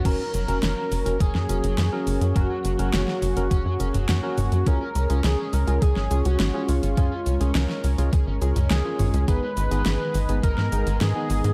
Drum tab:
CC |x---------------|----------------|----------------|----------------|
HH |x-xxx-oxx-xxx-ox|x-xxx-oxx-xxx-ox|x-xxx-oxx-xxx-ox|x-xxx-oxx-xxx-ox|
SH |x-xxx-xxx-xxx-xx|x-xxx-xxx-xxx-xx|x-xxx-xxx-xxx-xx|x-xxx-xxx-xxx-xx|
SD |----o----o--o---|----oo------o---|----o----o--o---|----oo------o---|
T2 |----------------|o----------o--o-|----------------|o----------o--o-|
BD |o-------o-------|o-------o-------|o-------o-------|o-------o-------|

CC |----------------|
HH |x-xxx-oxx-xxx-ox|
SH |x-xxx-xxx-xxx-xx|
SD |----o----o--o---|
T2 |----------------|
BD |o-------o-------|